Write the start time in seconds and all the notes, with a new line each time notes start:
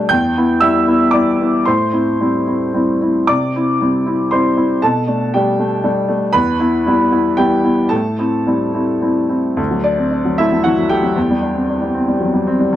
Already playing: B2 G3 A3 D4 G4 A4 G5 A5
0.09 E2 G5 G6
0.37 B3 E4
0.60 G3 B3 E4 E5 E6
0.87 B3 E4
1.11 G3 B3 E4 D5 D6
1.41 B3 E4
1.65 A2 C5 C6
1.92 C4 E4
2.20 G3 C4 E4
2.47 C4 E4
2.74 G3 C4 E4
3.01 C4 E4
3.27 C3 D5 D6
3.56 C4 E4
3.81 G3 C4 E4
4.06 C4 E4
4.31 G3 C4 E4 C5 C6
4.56 C4 E4
4.82 B2 A4 A5
5.07 A3 D4
5.34 G3 A3 D4 G4 G5
5.59 A3 D4
5.84 G3 A3 D4
6.08 A3 D4
6.33 E2 B4 B5
6.60 B3 E4
6.86 G3 B3 E4
7.11 B3 E4
7.37 G3 B3 E4 G4 G5
7.64 B3 E4
7.89 A2 A4 A5
8.18 C4 E4
8.47 G3 C4 E4
8.74 C4 E4
9.01 G3 C4 E4
9.29 C4 E4
9.57 D2
9.71 F#3
9.84 D4 D5
9.98 C4
10.11 D4
10.25 F#3
10.38 A3 E4 E5
10.52 F#3
10.64 E3 F#4 F#5
10.78 F#3
10.89 A3 G4 G5
11.03 F#3
11.16 E2
11.30 G3
11.42 D4
11.55 C4
11.69 D4
11.82 G3
11.94 C4
12.08 G3
12.21 F#3
12.34 G3
12.47 C4
12.59 G3
12.73 E2